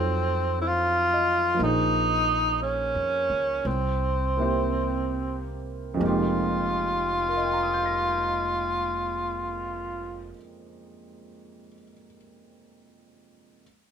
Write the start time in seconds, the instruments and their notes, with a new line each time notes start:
Already playing: upright bass F2, grand piano F#3 C4 D#4 F4 A4, tenor saxophone C4
0.61 tenor saxophone E4, grand piano C5
0.68 tenor saxophone F4
1.13 grand piano D#5
1.54 grand piano F3 A#3
1.59 upright bass A#1, grand piano D#4 G#4, tenor saxophone D#4
1.65 grand piano C5
2.62 tenor saxophone C#4
2.95 upright bass F2
3.30 upright bass C#2
3.65 upright bass C2, tenor saxophone C4
4.37 grand piano A#3 C4 E4 G4
4.42 grand piano C5
5.94 grand piano F2 F3
5.99 upright bass F1, grand piano G#3 A#3
6.03 grand piano D#4 G4, tenor saxophone F4
7.28 grand piano A#4
7.36 grand piano D#5
7.44 grand piano G5
7.53 grand piano A#5
7.63 grand piano D#6
7.74 grand piano G6
7.86 grand piano A#6